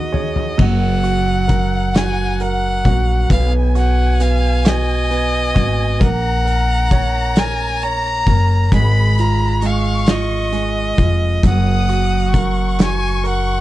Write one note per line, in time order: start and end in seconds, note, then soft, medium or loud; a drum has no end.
0.00 0.54 D#2 medium
0.00 0.54 D#3 medium
0.00 0.61 B3 soft
0.00 0.54 D#4 soft
0.00 0.56 F#4 soft
0.00 0.11 G#4 soft
0.00 0.63 D#5 medium
0.00 0.11 F#5 medium
0.12 0.57 G#4 soft
0.12 0.55 C#5 soft
0.12 floor tom medium
0.36 floor tom medium
0.58 2.81 F#1 medium
0.58 3.26 F#3 medium
0.58 3.27 F#5 medium
0.58 1.98 F#5 medium
0.58 kick loud
0.58 crash medium
1.04 1.94 F#4 medium
1.04 closed hi-hat soft
1.48 2.39 A#4 medium
1.48 kick medium
1.48 closed hi-hat medium
1.95 2.84 F#4 medium
1.95 2.43 G#5 medium
1.95 snare loud
1.95 closed hi-hat medium
2.40 3.28 A#4 medium
2.40 3.31 F#5 medium
2.40 closed hi-hat soft
2.85 3.27 A#1 medium
2.85 3.29 F#4 medium
2.85 kick medium
2.85 closed hi-hat soft
3.30 5.52 B1 loud
3.30 4.19 B3 medium
3.30 3.52 F5 medium
3.30 6.01 G#5 loud
3.30 kick loud
3.30 closed hi-hat medium
3.75 4.63 F#4 medium
3.75 4.23 F#5 medium
3.75 closed hi-hat soft
4.20 5.09 B3 medium
4.20 4.69 F5 medium
4.20 closed hi-hat medium
4.65 5.53 F#4 medium
4.65 6.04 D#5 loud
4.65 snare loud
4.65 closed hi-hat medium
5.11 5.98 B3 medium
5.11 closed hi-hat soft
5.54 5.98 G#1 medium
5.54 5.99 F#4 medium
5.54 kick medium
5.54 closed hi-hat soft
6.00 8.23 A#1 medium
6.00 8.68 A#3 medium
6.00 7.40 F#5 loud
6.00 8.72 A#5 loud
6.00 kick loud
6.00 closed hi-hat medium
6.45 7.35 A#4 medium
6.45 closed hi-hat soft
6.91 7.82 C#5 medium
6.91 kick medium
6.91 closed hi-hat medium
7.36 8.26 A#4 medium
7.36 7.85 G#5 loud
7.36 snare loud
7.36 closed hi-hat medium
7.82 8.70 C#5 medium
7.82 8.73 A#5 loud
7.82 closed hi-hat soft
8.27 8.69 F#1 medium
8.27 8.71 A#4 medium
8.27 kick medium
8.27 closed hi-hat soft
8.71 10.94 G#1 medium
8.71 9.61 G#3 medium
8.71 9.58 B5 loud
8.71 9.21 B5 loud
8.71 kick loud
8.71 closed hi-hat medium
9.18 10.08 F4 medium
9.18 9.67 A#5 loud
9.18 closed hi-hat soft
9.62 10.51 G#3 medium
9.62 10.12 F5 medium
9.62 10.94 C#6 loud
9.62 closed hi-hat medium
10.06 10.96 F4 medium
10.06 11.45 D#5 medium
10.06 snare loud
10.06 closed hi-hat medium
10.52 11.40 G#3 medium
10.52 closed hi-hat soft
10.97 11.41 F1 medium
10.97 11.42 F4 soft
10.97 kick medium
10.97 closed hi-hat soft
11.43 13.61 F#1 medium
11.43 13.61 F#3 medium
11.43 12.77 F#5 medium
11.43 12.30 D#6 loud
11.43 kick loud
11.43 closed hi-hat medium
11.89 12.78 F#4 medium
11.89 closed hi-hat soft
12.34 13.22 A#4 medium
12.34 13.61 C#6 loud
12.34 kick medium
12.34 closed hi-hat medium
12.79 13.61 F#4 medium
12.79 13.23 G#5 loud
12.79 snare loud
12.79 closed hi-hat medium
13.24 13.61 A#4 medium
13.24 closed hi-hat soft
13.28 13.61 F#5 loud